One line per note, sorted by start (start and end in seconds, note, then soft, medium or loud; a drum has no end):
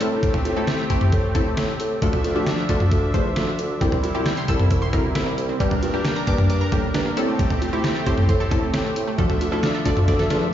0.01 0.32 A2 loud
0.01 0.45 A3 loud
0.01 2.00 A3 medium
0.01 0.45 C4 medium
0.01 2.00 C4 medium
0.01 0.45 E4 medium
0.01 2.00 G4 medium
0.01 0.45 A4 loud
0.01 closed hi-hat medium
0.23 kick loud
0.23 closed hi-hat medium
0.34 mid tom loud
0.45 0.69 A2 loud
0.45 closed hi-hat medium
0.45 cowbell medium
0.57 0.75 A3 medium
0.57 0.75 C4 medium
0.57 0.75 E4 medium
0.57 0.75 A4 loud
0.67 snare loud
0.67 closed hi-hat medium
0.90 1.15 A3 medium
0.90 1.15 C4 medium
0.90 1.15 E4 medium
0.90 1.15 G4 loud
0.90 kick loud
0.90 closed hi-hat medium
1.01 mid tom loud
1.12 1.28 A2 loud
1.12 kick loud
1.12 closed hi-hat medium
1.35 1.51 A2 medium
1.35 1.72 A3 medium
1.35 1.72 C4 medium
1.35 1.72 E4 medium
1.35 1.72 A4 loud
1.35 kick loud
1.35 closed hi-hat medium
1.35 mid tom medium
1.57 1.73 A2 loud
1.57 snare loud
1.57 closed hi-hat medium
1.80 1.95 A2 loud
1.80 closed hi-hat medium
2.02 2.18 D2 loud
2.02 3.79 F3 medium
2.02 2.21 A3 medium
2.02 3.79 D4 medium
2.02 2.21 D4 medium
2.02 2.21 F4 medium
2.02 2.21 A4 loud
2.02 3.79 E5 medium
2.02 kick loud
2.02 closed hi-hat medium
2.13 mid tom loud
2.24 2.48 D2 loud
2.24 closed hi-hat medium
2.24 cowbell medium
2.36 2.54 A3 medium
2.36 2.54 D4 medium
2.36 2.54 F4 medium
2.36 2.54 G4 loud
2.47 snare loud
2.47 closed hi-hat medium
2.69 2.85 D2 loud
2.69 2.94 A3 medium
2.69 2.94 D4 medium
2.69 2.94 F4 medium
2.69 2.94 A4 loud
2.69 kick loud
2.69 closed hi-hat medium
2.69 cowbell medium
2.80 mid tom medium
2.91 3.07 D2 loud
2.91 kick loud
2.91 closed hi-hat medium
3.14 3.30 E2 loud
3.14 3.51 A3 medium
3.14 3.51 D4 medium
3.14 3.51 F4 medium
3.14 3.51 C5 loud
3.14 kick loud
3.14 closed hi-hat medium
3.36 3.52 D2 loud
3.36 snare loud
3.36 closed hi-hat medium
3.59 3.74 D2 loud
3.59 closed hi-hat medium
3.81 3.97 C2 loud
3.81 5.58 C3 medium
3.81 4.00 G3 medium
3.81 7.14 G3 medium
3.81 3.88 G3 medium
3.81 4.00 C4 medium
3.81 5.58 E4 medium
3.81 4.00 E4 medium
3.81 4.00 G4 loud
3.81 kick loud
3.81 closed hi-hat medium
3.92 3.99 C4 medium
3.92 mid tom loud
4.03 4.27 C2 loud
4.03 closed hi-hat medium
4.03 cowbell medium
4.15 4.33 G3 medium
4.15 4.33 C4 medium
4.15 4.33 E4 medium
4.15 4.33 G4 loud
4.15 4.21 G4 loud
4.26 4.32 G5 medium
4.26 snare loud
4.26 closed hi-hat medium
4.37 4.44 C6 medium
4.48 4.64 C2 loud
4.48 4.73 G3 medium
4.48 4.73 C4 medium
4.48 4.73 E4 medium
4.48 4.73 A4 loud
4.48 4.55 E6 loud
4.48 kick loud
4.48 closed hi-hat medium
4.59 mid tom loud
4.71 4.86 C2 loud
4.71 4.77 E6 medium
4.71 kick loud
4.71 closed hi-hat medium
4.82 4.88 C6 loud
4.93 5.09 D2 medium
4.93 5.30 G3 medium
4.93 5.30 C4 medium
4.93 5.30 E4 medium
4.93 5.30 A#4 loud
4.93 kick loud
4.93 closed hi-hat medium
4.93 mid tom medium
5.15 5.31 C2 loud
5.15 5.22 E4 loud
5.15 snare loud
5.15 closed hi-hat medium
5.27 5.33 C4 medium
5.38 5.53 C2 loud
5.38 closed hi-hat medium
5.49 5.56 C4 loud
5.60 5.76 G2 loud
5.60 5.67 G3 loud
5.60 5.79 G3 medium
5.60 5.79 A#3 medium
5.60 7.15 D4 medium
5.60 5.79 D4 medium
5.60 5.79 G4 loud
5.60 7.15 A#4 medium
5.60 kick loud
5.60 closed hi-hat medium
5.71 5.78 A#3 medium
5.71 mid tom loud
5.82 6.06 G2 loud
5.82 closed hi-hat medium
5.82 cowbell medium
5.94 6.12 G3 medium
5.94 6.12 A#3 medium
5.94 6.12 D4 medium
5.94 6.12 G4 loud
5.94 6.00 G4 loud
6.05 6.12 G5 medium
6.05 snare loud
6.05 closed hi-hat medium
6.16 6.23 A#5 medium
6.27 6.43 G2 loud
6.27 6.52 G3 medium
6.27 6.52 A#3 medium
6.27 6.52 D4 medium
6.27 6.52 G4 loud
6.27 6.34 D6 loud
6.27 kick loud
6.27 closed hi-hat medium
6.38 mid tom loud
6.50 6.65 G2 loud
6.50 6.56 D6 medium
6.50 closed hi-hat medium
6.61 6.68 A#5 loud
6.72 6.88 A2 loud
6.72 7.09 G3 medium
6.72 7.09 A#3 medium
6.72 7.09 D4 medium
6.72 7.09 G4 loud
6.72 kick loud
6.72 closed hi-hat medium
6.72 mid tom medium
6.94 7.10 G2 loud
6.94 7.01 D4 loud
6.94 snare loud
6.94 closed hi-hat medium
7.06 7.12 A#3 medium
7.17 7.48 A2 loud
7.17 7.62 A3 loud
7.17 9.16 A3 medium
7.17 7.62 C4 medium
7.17 9.16 C4 medium
7.17 7.62 E4 medium
7.17 9.16 G4 medium
7.17 7.62 A4 loud
7.17 closed hi-hat medium
7.28 7.35 A3 medium
7.39 7.46 G3 loud
7.39 kick loud
7.39 closed hi-hat medium
7.50 7.57 A3 medium
7.50 mid tom loud
7.62 closed hi-hat medium
7.62 cowbell medium
7.73 7.92 A3 medium
7.73 7.92 C4 medium
7.73 7.79 E4 loud
7.73 7.92 E4 medium
7.73 7.92 G4 loud
7.84 7.91 G4 medium
7.84 snare loud
7.84 closed hi-hat medium
7.95 8.02 A4 medium
8.06 8.22 A2 medium
8.06 8.31 A3 medium
8.06 8.31 C4 medium
8.06 8.31 E4 medium
8.06 8.31 G4 loud
8.06 8.13 C5 loud
8.06 kick loud
8.06 closed hi-hat medium
8.18 mid tom loud
8.29 8.45 A2 loud
8.29 8.36 C5 medium
8.29 kick medium
8.29 closed hi-hat medium
8.40 8.47 A4 loud
8.51 8.67 A2 medium
8.51 8.89 A3 medium
8.51 8.89 C4 medium
8.51 8.89 E4 medium
8.51 8.89 A4 medium
8.51 kick loud
8.51 closed hi-hat medium
8.51 mid tom medium
8.74 8.89 A2 loud
8.74 8.80 C4 loud
8.74 snare loud
8.74 closed hi-hat medium
8.85 8.92 A3 medium
8.96 9.12 A2 loud
8.96 closed hi-hat medium
9.07 9.14 A3 medium
9.18 9.34 D2 loud
9.18 10.54 F3 medium
9.18 9.25 F3 loud
9.18 9.37 A3 medium
9.18 9.37 D4 medium
9.18 10.54 D4 medium
9.18 9.37 F4 medium
9.18 9.37 A4 loud
9.18 10.54 E5 medium
9.18 kick loud
9.18 closed hi-hat medium
9.30 9.36 A3 medium
9.30 mid tom loud
9.41 9.64 D2 loud
9.41 closed hi-hat medium
9.41 cowbell medium
9.52 9.71 A3 medium
9.52 9.71 D4 medium
9.52 9.59 E4 loud
9.52 9.71 F4 medium
9.52 9.71 A4 loud
9.63 9.70 F4 medium
9.63 snare loud
9.63 closed hi-hat medium
9.74 9.81 A4 medium
9.85 10.01 D2 loud
9.85 10.10 A3 medium
9.85 10.10 D4 medium
9.85 10.10 F4 medium
9.85 10.10 A4 loud
9.85 9.92 D5 loud
9.85 kick loud
9.85 closed hi-hat medium
9.85 cowbell medium
9.97 mid tom loud
10.08 10.24 D2 loud
10.08 10.15 D5 medium
10.08 kick medium
10.08 snare medium
10.08 closed hi-hat medium
10.19 10.26 A4 loud
10.19 snare medium
10.30 10.46 E2 medium
10.30 10.54 A3 medium
10.30 10.54 D4 medium
10.30 10.54 F4 medium
10.30 10.54 A4 loud
10.30 snare medium
10.30 closed hi-hat medium